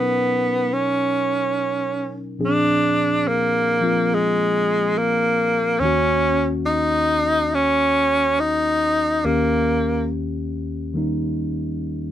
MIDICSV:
0, 0, Header, 1, 3, 480
1, 0, Start_track
1, 0, Tempo, 854701
1, 1346, Time_signature, 4, 2, 24, 8
1, 6804, End_track
2, 0, Start_track
2, 0, Title_t, "Tenor saxophone"
2, 0, Program_c, 0, 66
2, 0, Note_on_c, 0, 59, 76
2, 412, Note_on_c, 0, 61, 75
2, 420, Note_off_c, 0, 59, 0
2, 1261, Note_off_c, 0, 61, 0
2, 1376, Note_on_c, 0, 62, 90
2, 1839, Note_on_c, 0, 58, 83
2, 1848, Note_off_c, 0, 62, 0
2, 2327, Note_on_c, 0, 56, 83
2, 2336, Note_off_c, 0, 58, 0
2, 2794, Note_on_c, 0, 58, 84
2, 2802, Note_off_c, 0, 56, 0
2, 3256, Note_on_c, 0, 61, 94
2, 3264, Note_off_c, 0, 58, 0
2, 3641, Note_off_c, 0, 61, 0
2, 3739, Note_on_c, 0, 63, 96
2, 4237, Note_on_c, 0, 61, 90
2, 4246, Note_off_c, 0, 63, 0
2, 4716, Note_on_c, 0, 63, 94
2, 4725, Note_off_c, 0, 61, 0
2, 5195, Note_on_c, 0, 58, 78
2, 5203, Note_off_c, 0, 63, 0
2, 5668, Note_off_c, 0, 58, 0
2, 6804, End_track
3, 0, Start_track
3, 0, Title_t, "Tine electric piano"
3, 0, Program_c, 1, 4
3, 0, Control_c, 1, 64, 127
3, 0, Note_on_c, 1, 47, 46
3, 0, Note_on_c, 1, 54, 44
3, 0, Note_on_c, 1, 61, 42
3, 0, Note_on_c, 1, 63, 42
3, 0, Note_on_c, 1, 70, 51
3, 1341, Note_off_c, 1, 47, 0
3, 1343, Note_on_c, 1, 46, 42
3, 1344, Note_off_c, 1, 54, 0
3, 1347, Note_on_c, 1, 53, 39
3, 1349, Note_off_c, 1, 61, 0
3, 1350, Note_on_c, 1, 60, 40
3, 1350, Note_on_c, 1, 62, 39
3, 1352, Note_off_c, 1, 63, 0
3, 1352, Note_on_c, 1, 68, 49
3, 1353, Control_c, 1, 64, 0
3, 1355, Note_off_c, 1, 70, 0
3, 1448, Control_c, 1, 64, 127
3, 2134, Note_off_c, 1, 53, 0
3, 2140, Note_on_c, 1, 53, 43
3, 2142, Note_off_c, 1, 60, 0
3, 2142, Note_on_c, 1, 58, 39
3, 2149, Note_on_c, 1, 60, 35
3, 2153, Note_on_c, 1, 65, 43
3, 3256, Note_on_c, 1, 39, 48
3, 3260, Note_off_c, 1, 58, 0
3, 3262, Note_off_c, 1, 53, 0
3, 3263, Note_off_c, 1, 46, 0
3, 3266, Note_off_c, 1, 60, 0
3, 3266, Note_off_c, 1, 62, 0
3, 3266, Note_on_c, 1, 51, 48
3, 3267, Note_off_c, 1, 68, 0
3, 3267, Note_on_c, 1, 58, 46
3, 3268, Note_off_c, 1, 65, 0
3, 3271, Control_c, 1, 64, 0
3, 3276, Note_on_c, 1, 61, 48
3, 3285, Note_on_c, 1, 66, 54
3, 3364, Control_c, 1, 64, 127
3, 5177, Note_off_c, 1, 39, 0
3, 5182, Note_off_c, 1, 51, 0
3, 5183, Note_off_c, 1, 58, 0
3, 5187, Note_off_c, 1, 61, 0
3, 5190, Control_c, 1, 64, 0
3, 5192, Note_off_c, 1, 66, 0
3, 5192, Note_on_c, 1, 51, 40
3, 5193, Note_on_c, 1, 39, 49
3, 5195, Note_on_c, 1, 58, 44
3, 5199, Note_on_c, 1, 67, 49
3, 5203, Note_on_c, 1, 61, 45
3, 5292, Control_c, 1, 64, 127
3, 6136, Note_off_c, 1, 51, 0
3, 6143, Note_on_c, 1, 51, 40
3, 6146, Note_off_c, 1, 58, 0
3, 6150, Note_on_c, 1, 55, 34
3, 6153, Note_on_c, 1, 58, 35
3, 6162, Note_on_c, 1, 63, 42
3, 6804, Note_off_c, 1, 39, 0
3, 6804, Note_off_c, 1, 51, 0
3, 6804, Note_off_c, 1, 55, 0
3, 6804, Note_off_c, 1, 58, 0
3, 6804, Note_off_c, 1, 61, 0
3, 6804, Note_off_c, 1, 63, 0
3, 6804, Note_off_c, 1, 67, 0
3, 6804, End_track
0, 0, End_of_file